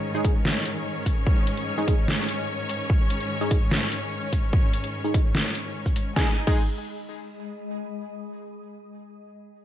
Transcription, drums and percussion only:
0.15 shaker
0.25 kick, closed hi-hat
0.45 snare
0.65 closed hi-hat
1.06 kick, closed hi-hat
1.27 kick
1.47 closed hi-hat
1.57 closed hi-hat
1.78 shaker
1.88 kick, closed hi-hat
2.08 snare
2.29 closed hi-hat
2.69 closed hi-hat
2.90 kick
3.10 closed hi-hat
3.21 closed hi-hat
3.41 shaker
3.51 kick, closed hi-hat
3.71 snare
3.92 closed hi-hat
4.33 kick, closed hi-hat
4.53 kick
4.73 closed hi-hat
4.84 closed hi-hat
5.04 shaker
5.14 kick, closed hi-hat
5.35 snare
5.55 closed hi-hat
5.86 kick, shaker
5.96 closed hi-hat
6.16 kick, snare
6.47 kick, crash

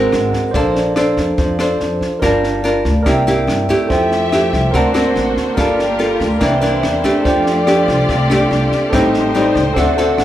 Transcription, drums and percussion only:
0.12 cross-stick, snare
0.33 kick, snare
0.54 kick, snare
0.75 snare
0.96 cross-stick, snare
1.17 kick, snare
1.38 kick, snare
1.59 cross-stick, snare
1.80 snare
2.01 kick, snare
2.22 kick, cross-stick, snare
2.44 snare
2.64 snare
2.85 kick, snare
3.06 kick, cross-stick, snare
3.28 snare
3.48 cross-stick, snare
3.69 kick, snare
3.90 kick, snare
4.12 snare
4.32 cross-stick, snare
4.53 kick, snare
4.74 kick, snare
4.95 cross-stick, snare
5.16 snare
5.37 kick, snare
5.58 kick, cross-stick, snare
5.79 snare
6.00 snare
6.20 kick, snare
6.41 kick, cross-stick, snare
6.63 snare
6.83 cross-stick, snare
7.04 kick, snare
7.25 kick, snare
7.46 snare
7.67 cross-stick, snare
7.88 kick, snare
8.09 kick, snare
8.30 cross-stick, snare
8.51 snare
8.72 kick, snare
8.93 kick, cross-stick, snare
9.14 snare
9.35 snare
9.55 kick, snare
9.76 kick, cross-stick, snare
9.98 snare
10.18 cross-stick, snare

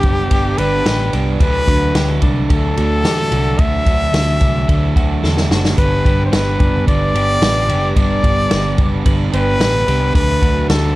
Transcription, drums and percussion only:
0.03 kick, ride
0.31 kick, ride
0.58 ride
0.86 snare, ride
1.13 ride
1.40 kick, ride
1.68 kick, ride
1.95 snare, ride
2.22 kick, ride
2.50 kick, ride
2.77 ride
3.05 snare, ride
3.32 ride
3.59 kick, ride
3.86 kick, ride
4.14 snare, ride
4.41 kick, ride
4.69 kick, ride
4.96 kick, ride
5.24 snare
5.37 snare
5.51 snare
5.65 snare
5.78 kick, hi-hat pedal, ride
6.05 kick, ride
6.33 snare, ride
6.60 kick, ride
6.88 kick, ride
7.15 ride
7.42 snare, ride
7.69 ride
7.96 kick, ride
8.24 kick, ride
8.51 snare, ride
8.78 kick, ride
9.06 kick, ride
9.33 ride
9.61 snare, ride
9.88 ride
10.15 kick, ride
10.42 kick, ride
10.70 snare, ride

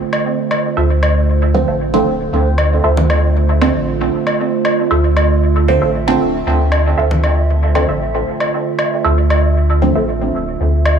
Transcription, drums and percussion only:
0.13 low woodblock
0.51 low woodblock
1.03 low woodblock
2.58 low woodblock
2.97 low conga
3.10 low woodblock
3.62 low woodblock
4.27 low woodblock
4.65 low woodblock
5.17 low woodblock
6.72 low woodblock
7.11 low conga
7.24 low woodblock
7.75 low woodblock
8.40 low woodblock
8.79 low woodblock
9.30 low woodblock
10.85 low woodblock

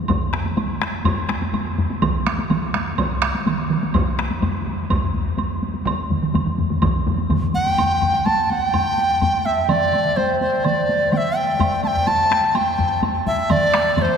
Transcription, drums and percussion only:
0.08 taiko, taiko low-mid, taiko high, high woodblock
0.34 taiko rim, taiko high
0.45 taiko high
0.57 taiko low-mid, taiko high, high woodblock
0.82 taiko rim, taiko high
1.05 taiko, taiko low-mid, taiko high, high woodblock
1.29 taiko rim, taiko high
1.42 taiko high
1.53 taiko low-mid, taiko high, high woodblock
1.78 taiko low-mid, taiko high
1.90 taiko high
2.02 taiko, taiko mid, taiko high, high woodblock
2.27 taiko rim, taiko high
2.39 taiko high
2.50 taiko mid, taiko high, high woodblock
2.74 taiko rim, taiko high
2.98 taiko, taiko mid, taiko high, high woodblock
3.22 taiko rim, taiko high
3.34 taiko high
3.46 taiko mid, taiko high, high woodblock
3.70 taiko mid, taiko high
3.83 taiko high
3.94 taiko, taiko low-mid, taiko high, high woodblock
4.18 taiko rim, taiko high
4.30 taiko high
4.42 taiko low-mid, taiko high, high woodblock
4.66 taiko high
4.90 taiko, taiko low-mid, taiko high, high woodblock
5.03 taiko low-mid
5.14 taiko low-mid, taiko high
5.27 taiko low-mid
5.38 taiko high, high woodblock
5.62 taiko high
5.74 taiko high
5.86 taiko, taiko low-mid, taiko mid, taiko high, high woodblock
6.10 taiko low-mid, taiko mid, taiko high
6.22 taiko low-mid, taiko mid
6.34 taiko low-mid, taiko mid, taiko high, high woodblock
6.47 taiko low-mid, taiko mid
6.58 taiko low-mid, taiko mid, taiko high
6.70 taiko low-mid, taiko mid, taiko high
6.82 taiko, taiko low-mid, taiko mid, taiko high, high woodblock
7.06 taiko low-mid, taiko mid, taiko high
7.18 taiko high
7.30 taiko low-mid, taiko mid, taiko high, high woodblock
7.42 taiko low-mid, taiko mid
7.54 taiko high
7.66 taiko high
7.78 taiko low-mid, taiko high, high woodblock
7.90 taiko high
8.02 taiko low-mid, taiko high, high woodblock
8.14 taiko low-mid, taiko high
8.26 taiko high, high woodblock
8.50 taiko high
8.62 taiko high
8.73 taiko low-mid, taiko high, high woodblock
8.86 taiko high
8.98 taiko high
9.10 taiko high
9.21 taiko low-mid, taiko high, high woodblock
9.34 taiko high
9.46 taiko high
9.58 taiko high
9.69 taiko mid, taiko high, high woodblock
9.82 taiko high
9.92 taiko mid, taiko high, high woodblock
10.05 taiko mid, taiko high
10.17 taiko high, high woodblock
10.41 taiko high
10.53 taiko high
10.64 taiko mid, taiko high, high woodblock
10.77 taiko high
10.89 taiko high
11.01 taiko high
11.12 taiko mid, taiko high, high woodblock
11.25 taiko high
11.48 taiko high
11.60 taiko low-mid, taiko high, high woodblock
11.72 taiko high
11.83 taiko high, high woodblock
11.95 taiko low-mid, taiko high
12.07 taiko low-mid, taiko high, high woodblock
12.31 taiko rim, taiko high
12.43 taiko high
12.55 taiko high, high woodblock
12.66 taiko high
12.79 taiko low-mid, taiko high
12.91 taiko high
13.02 taiko low-mid, taiko high, high woodblock
13.14 taiko high
13.26 taiko low-mid, taiko high
13.38 taiko high
13.50 taiko low-mid, taiko mid, taiko high, high woodblock
13.63 taiko high
13.74 taiko rim, taiko high
13.86 taiko high
13.97 taiko low-mid, taiko mid, taiko high, high woodblock
14.09 taiko high

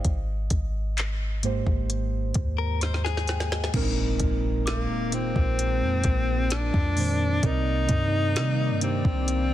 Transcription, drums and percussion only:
0.05 kick, closed hi-hat
0.50 kick, closed hi-hat
0.98 clap, closed hi-hat
1.43 closed hi-hat
1.67 kick
1.90 closed hi-hat
2.34 kick, closed hi-hat
2.81 snare, closed hi-hat
2.94 snare
3.06 snare
3.17 snare
3.27 snare, closed hi-hat
3.40 snare
3.52 snare
3.64 snare
3.74 kick, closed hi-hat, crash
4.20 kick, closed hi-hat
4.67 snare, closed hi-hat
5.12 closed hi-hat
5.36 kick
5.59 closed hi-hat
6.04 kick, closed hi-hat
6.50 snare, closed hi-hat
6.74 kick
6.97 open hi-hat
7.43 kick, closed hi-hat
7.89 kick, closed hi-hat
8.36 snare, closed hi-hat
8.81 closed hi-hat
9.05 kick
9.28 closed hi-hat

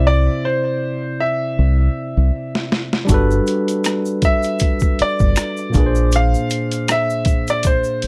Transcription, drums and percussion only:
2.55 snare
2.72 snare
2.93 snare
3.09 kick, closed hi-hat, shaker
3.31 shaker
3.47 closed hi-hat, shaker
3.68 closed hi-hat, shaker
3.84 finger snap, cross-stick, closed hi-hat, shaker
4.05 shaker
4.22 kick, closed hi-hat, shaker
4.43 closed hi-hat, shaker
4.59 kick, closed hi-hat, shaker
4.80 kick, shaker
4.99 closed hi-hat
5.19 kick, shaker
5.36 finger snap, cross-stick, closed hi-hat, shaker
5.57 shaker
5.73 kick, closed hi-hat, shaker
5.95 shaker
6.12 closed hi-hat, shaker
6.34 shaker
6.50 closed hi-hat, shaker
6.71 closed hi-hat, shaker
6.88 finger snap, cross-stick, closed hi-hat, shaker
7.10 shaker
7.25 kick, closed hi-hat, shaker
7.47 closed hi-hat, shaker
7.63 kick, closed hi-hat, shaker
7.84 shaker
8.02 closed hi-hat

